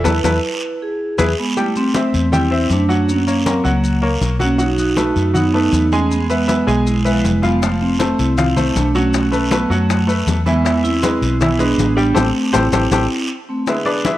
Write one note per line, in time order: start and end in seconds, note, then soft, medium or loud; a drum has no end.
0.04 0.19 E2 medium
0.04 0.17 E4 medium
0.04 0.78 E4 medium
0.04 0.17 A4 medium
0.04 0.17 B4 medium
0.04 0.78 B4 medium
0.04 low bongo loud
0.04 high conga loud
0.04 long guiro medium
0.04 maracas medium
0.24 0.38 E2 medium
0.24 0.36 E4 medium
0.24 0.36 A4 medium
0.24 0.36 B4 medium
0.24 low bongo loud
0.24 high conga loud
0.24 long guiro loud
0.24 maracas medium
0.82 1.35 E4 medium
0.82 1.35 G#4 medium
1.18 1.33 E2 medium
1.18 1.31 E4 loud
1.18 1.31 G#4 medium
1.18 1.31 B4 medium
1.18 low bongo medium
1.18 high conga medium
1.18 long guiro loud
1.18 maracas loud
1.39 1.56 G#3 medium
1.39 1.56 B3 medium
1.57 1.88 G3 medium
1.57 1.66 A3 medium
1.57 1.66 E4 medium
1.57 1.88 G4 medium
1.57 1.88 G5 medium
1.57 high conga soft
1.57 maracas medium
1.76 2.29 A3 medium
1.76 2.33 C4 medium
1.76 high conga soft
1.76 maracas medium
1.94 2.26 C4 medium
1.94 2.26 C5 medium
1.94 2.26 E5 medium
1.94 high conga medium
1.94 short guiro medium
1.94 maracas medium
2.13 2.67 E2 medium
2.13 high conga soft
2.13 short guiro medium
2.13 maracas soft
2.32 2.48 G3 medium
2.32 2.69 C4 medium
2.32 2.69 E4 loud
2.32 2.48 G4 medium
2.32 2.48 G5 medium
2.32 high conga soft
2.32 low conga medium
2.32 long guiro medium
2.32 maracas medium
2.51 2.82 C4 medium
2.51 2.83 C5 medium
2.51 2.83 E5 medium
2.51 high conga soft
2.70 3.59 F#2 medium
2.70 3.07 A3 medium
2.70 3.11 D4 medium
2.70 high conga medium
2.70 short guiro medium
2.70 maracas medium
2.89 3.20 F#3 medium
2.89 3.20 F#4 medium
2.89 3.21 F#5 medium
2.89 high conga soft
2.89 short guiro medium
2.89 maracas soft
3.09 3.45 A#3 medium
3.09 3.45 C#4 medium
3.09 high conga soft
3.09 long guiro medium
3.09 maracas medium
3.27 3.43 A#3 medium
3.27 3.43 A#4 medium
3.27 3.43 C#5 medium
3.27 high conga soft
3.27 maracas medium
3.46 3.65 F#3 medium
3.46 3.62 A#3 medium
3.46 3.67 C4 medium
3.46 3.62 A#4 medium
3.46 3.62 C#5 medium
3.46 high conga loud
3.46 short guiro medium
3.46 maracas medium
3.64 4.18 C#2 medium
3.64 3.95 F#3 medium
3.64 3.96 F#4 medium
3.64 3.96 F#5 medium
3.64 short guiro medium
3.64 maracas soft
3.68 4.02 F#3 medium
3.68 4.02 A#3 medium
3.84 high conga soft
3.84 long guiro medium
3.84 maracas medium
4.02 4.33 A#3 medium
4.02 4.34 A#4 medium
4.02 4.34 C#5 medium
4.02 high conga soft
4.21 5.10 B1 medium
4.21 high conga medium
4.21 short guiro medium
4.21 maracas medium
4.39 4.56 F#3 medium
4.39 4.60 A#3 medium
4.39 4.60 C#4 loud
4.39 4.56 F#4 medium
4.39 4.56 F#5 medium
4.39 high conga medium
4.39 short guiro medium
4.39 maracas soft
4.58 4.90 F#3 medium
4.58 4.79 D#4 medium
4.58 4.90 F#4 medium
4.58 4.78 F#4 loud
4.58 4.90 F#5 medium
4.58 high conga soft
4.58 long guiro medium
4.58 maracas medium
4.78 5.32 D#4 medium
4.78 5.32 F#4 loud
4.78 high conga soft
4.78 maracas medium
4.97 5.28 A3 medium
4.97 5.28 A4 medium
4.97 5.28 B4 medium
4.97 high conga medium
4.97 short guiro medium
4.97 maracas medium
5.16 5.69 F#2 medium
5.16 high conga soft
5.16 short guiro medium
5.16 maracas soft
5.33 5.50 F#3 medium
5.33 5.45 B3 medium
5.33 5.45 D#4 loud
5.33 5.50 F#4 medium
5.33 5.51 F#5 medium
5.33 high conga soft
5.33 low conga medium
5.33 long guiro medium
5.33 maracas medium
5.54 5.85 A3 medium
5.54 5.91 B3 medium
5.54 5.91 D#4 loud
5.54 5.85 A4 medium
5.54 5.86 B4 medium
5.54 high conga soft
5.73 6.62 E2 medium
5.73 high conga medium
5.73 short guiro medium
5.73 maracas medium
5.92 6.24 G#3 medium
5.92 6.11 A3 medium
5.92 6.12 C#4 medium
5.92 6.24 G#4 medium
5.92 6.24 G#5 medium
5.92 high conga soft
5.92 short guiro medium
5.92 maracas soft
6.11 6.20 G#3 medium
6.11 6.20 B3 medium
6.11 high conga soft
6.11 long guiro medium
6.11 maracas medium
6.30 6.84 G#3 medium
6.30 6.46 B3 medium
6.30 6.83 B3 medium
6.30 6.46 B4 medium
6.30 6.46 E5 medium
6.30 high conga soft
6.30 maracas medium
6.48 6.64 B3 medium
6.48 6.64 B4 medium
6.48 6.64 E5 medium
6.48 high conga medium
6.48 short guiro medium
6.48 maracas medium
6.67 7.21 B1 medium
6.67 6.98 G#3 medium
6.67 6.99 G#4 medium
6.67 6.99 G#5 medium
6.67 short guiro medium
6.67 maracas soft
6.87 6.95 G#3 medium
6.87 6.96 E4 medium
6.87 high conga soft
6.87 long guiro medium
6.87 maracas medium
7.05 7.13 G#3 medium
7.05 7.36 B3 medium
7.05 7.13 E4 medium
7.05 7.37 B4 medium
7.05 7.36 E5 medium
7.05 high conga soft
7.05 maracas medium
7.13 7.20 F3 medium
7.20 8.13 F1 medium
7.20 7.43 G#3 medium
7.20 7.43 E4 medium
7.24 high conga medium
7.24 short guiro medium
7.24 maracas medium
7.42 7.58 F3 medium
7.42 7.53 G#3 medium
7.42 7.52 B3 medium
7.42 7.59 F4 medium
7.42 7.59 F5 medium
7.42 high conga medium
7.42 short guiro medium
7.42 maracas soft
7.62 7.94 F3 medium
7.62 7.81 F3 medium
7.62 7.81 A3 medium
7.62 7.93 F4 medium
7.62 7.94 F5 medium
7.62 high bongo medium
7.62 high conga soft
7.62 long guiro medium
7.62 maracas medium
7.81 8.17 A3 medium
7.81 8.17 C4 medium
7.81 high bongo soft
7.81 high conga soft
7.99 8.31 A3 medium
7.99 8.31 A4 medium
7.99 8.31 C5 medium
7.99 high bongo medium
7.99 high conga medium
7.99 short guiro medium
7.99 maracas medium
8.19 8.72 C2 medium
8.19 8.73 C4 medium
8.19 8.72 E4 medium
8.19 high conga soft
8.19 short guiro medium
8.19 maracas soft
8.37 8.53 F3 medium
8.37 8.54 F4 medium
8.37 8.54 F5 medium
8.37 high bongo medium
8.37 high conga soft
8.37 low conga medium
8.37 long guiro medium
8.37 maracas medium
8.56 8.88 A3 medium
8.56 8.88 A4 medium
8.56 8.88 C5 medium
8.56 high bongo soft
8.56 high conga soft
8.56 low conga medium
8.56 maracas medium
8.75 9.64 B1 medium
8.75 8.94 A3 medium
8.75 8.94 D4 medium
8.75 high bongo soft
8.75 low bongo medium
8.75 high conga medium
8.75 short guiro medium
8.75 maracas medium
8.95 9.26 F#3 medium
8.95 9.48 A3 medium
8.95 9.48 C#4 medium
8.95 9.26 F#4 medium
8.95 9.26 F#5 medium
8.95 high bongo soft
8.95 high conga soft
8.95 short guiro medium
8.95 maracas soft
9.14 high bongo medium
9.14 high conga soft
9.14 long guiro medium
9.14 maracas medium
9.31 9.48 A3 medium
9.31 9.48 A4 medium
9.31 9.48 B4 medium
9.31 high bongo soft
9.31 high conga soft
9.31 maracas medium
9.51 9.61 F#3 medium
9.51 9.67 A3 medium
9.51 9.60 B3 medium
9.51 9.67 A4 medium
9.51 9.67 B4 medium
9.51 high bongo medium
9.51 high conga loud
9.51 short guiro medium
9.51 maracas medium
9.70 10.23 F#2 medium
9.70 10.01 F#3 medium
9.70 10.07 F#3 medium
9.70 10.06 A3 medium
9.70 10.01 F#4 medium
9.70 10.02 F#5 medium
9.70 short guiro medium
9.70 maracas soft
9.90 high bongo medium
9.90 high conga soft
9.90 long guiro medium
9.90 maracas medium
10.07 10.39 A3 medium
10.07 10.39 A4 medium
10.07 10.39 B4 medium
10.07 high bongo soft
10.07 high conga soft
10.07 maracas medium
10.27 11.16 E2 medium
10.27 high bongo soft
10.27 low bongo medium
10.27 high conga medium
10.27 short guiro medium
10.27 maracas medium
10.46 10.62 E3 medium
10.46 10.82 G#3 medium
10.46 10.81 B3 loud
10.46 10.62 E4 medium
10.46 10.62 E5 medium
10.46 high bongo soft
10.46 high conga medium
10.46 short guiro medium
10.46 maracas soft
10.65 10.96 E3 medium
10.65 10.96 E4 medium
10.65 10.96 E5 medium
10.65 high bongo medium
10.65 high conga soft
10.65 long guiro medium
10.65 maracas medium
10.84 11.37 C4 medium
10.84 11.40 E4 loud
10.84 high bongo soft
10.84 high conga soft
10.84 maracas medium
11.03 11.34 G#3 medium
11.03 11.34 G#4 medium
11.03 11.34 B4 medium
11.03 high bongo medium
11.03 high conga loud
11.03 short guiro medium
11.03 maracas medium
11.22 11.74 B1 medium
11.22 high conga soft
11.22 short guiro medium
11.22 maracas soft
11.41 11.56 E3 medium
11.41 11.59 B3 medium
11.41 11.56 E4 medium
11.41 11.58 E4 loud
11.41 11.56 E5 medium
11.41 high bongo medium
11.41 high conga soft
11.41 low conga medium
11.41 long guiro medium
11.41 maracas medium
11.58 11.90 G#3 medium
11.58 11.95 B3 medium
11.58 11.94 D4 medium
11.58 11.90 G#4 medium
11.58 11.91 B4 medium
11.58 high bongo soft
11.58 high conga soft
11.58 maracas medium
11.78 12.13 A1 medium
11.78 high bongo soft
11.78 low bongo medium
11.78 high conga medium
11.78 short guiro medium
11.78 maracas medium
11.96 12.12 G3 medium
11.96 12.15 B3 medium
11.96 12.16 D4 medium
11.96 12.13 G4 medium
11.96 12.13 G5 medium
11.96 high bongo soft
11.96 high conga soft
11.96 short guiro medium
11.96 maracas soft
12.15 12.30 A1 medium
12.15 12.34 A3 medium
12.15 12.33 C4 medium
12.15 12.28 G4 medium
12.15 12.27 A4 medium
12.15 12.27 C5 medium
12.15 high bongo loud
12.15 high conga loud
12.15 long guiro loud
12.15 maracas medium
12.34 12.45 A3 medium
12.34 12.43 C4 medium
12.53 12.68 A1 medium
12.53 13.26 C4 medium
12.53 13.25 E4 loud
12.53 12.66 G4 loud
12.53 12.65 A4 medium
12.53 12.66 C5 loud
12.53 high bongo loud
12.53 high conga medium
12.53 long guiro medium
12.53 maracas loud
12.72 12.87 A1 medium
12.72 12.85 G4 medium
12.72 12.85 A4 medium
12.72 12.85 C5 medium
12.72 high bongo loud
12.72 high conga loud
12.72 long guiro loud
12.72 maracas medium
12.91 13.06 A1 loud
12.91 13.04 G4 loud
12.91 13.04 A4 loud
12.91 13.04 C5 medium
12.91 high bongo loud
12.91 high conga loud
12.91 long guiro loud
12.91 maracas loud
13.49 13.67 A3 medium
13.49 13.66 C4 medium
13.67 14.18 D3 medium
13.67 14.18 G#3 soft
13.67 14.18 B3 medium
13.67 13.86 E4 medium
13.67 13.84 G#4 medium
13.67 13.84 B4 medium
13.67 13.86 E5 medium
13.67 high bongo medium
13.67 high conga soft
13.67 long guiro medium
13.67 maracas medium
13.85 14.04 D4 medium
13.85 14.04 G#4 medium
13.85 14.04 B4 medium
13.85 14.04 D5 medium
13.85 high bongo soft
13.85 high conga soft
13.85 maracas soft
14.05 14.18 E4 medium
14.05 14.18 G#4 medium
14.05 14.18 B4 medium
14.05 14.18 E5 medium
14.05 high bongo medium
14.05 high conga loud
14.05 short guiro medium
14.05 maracas medium